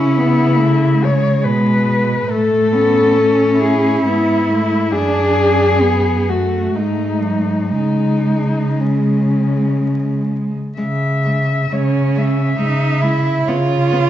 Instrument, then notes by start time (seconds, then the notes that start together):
cello
Already playing: C#3 C#4 E4
0.17 B3
0.57 A3
0.99 G#3
1.04 C#5
1.41 B2 G#3 B4
2.28 A2 A3 A4
2.72 B3 C#4
3.16 C#4
3.60 E4 G#4
4.03 G#2 B3 E4
4.51 A3
4.91 F#2 D4 G#4
5.39 C#4
5.81 B3
6.28 A3 F#4
6.73 G#2 G#3 D#4
7.20 F#3
7.71 C#3 G#3 D#4
8.80 C#4
10.78 C#3 G#3 E5
11.25 G#3
11.71 C#3 G#3 C#4 C#5
12.16 G#3 E5
12.58 C#3 G#3 D#4
13.01 G#3 E4
13.47 C#3 B3 F4 C#5
13.93 B3